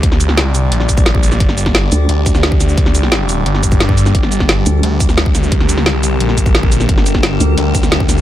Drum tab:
HH |x-x-x-x-x-x-x-x-|x-x-x-x-x-x-x-x-|x-x-x-x-x-x-x-x-|x-x-x-x-x-x-x-x-|
SH |--x---x---xx--xx|--x---x---xx--xx|--x---x---xx--xx|--x---x---xx--xx|
SD |-o-oo----o--o--o|-o-oo------oo-o-|-o-oo----o--o--o|-o-oo------oo-o-|
BD |o---------oo-o--|o--o------o--o--|o---------oo-o--|o--o------o--o--|

HH |x-x-x-x-x-x-x-x-|x-x-x-x-x-x-x-x-|
SH |--x---x---xx--xx|--x---x---xx--xx|
SD |-o-oo----o--o--o|-o-oo------oo-o-|
BD |o---------oo-o--|o--o------o--o--|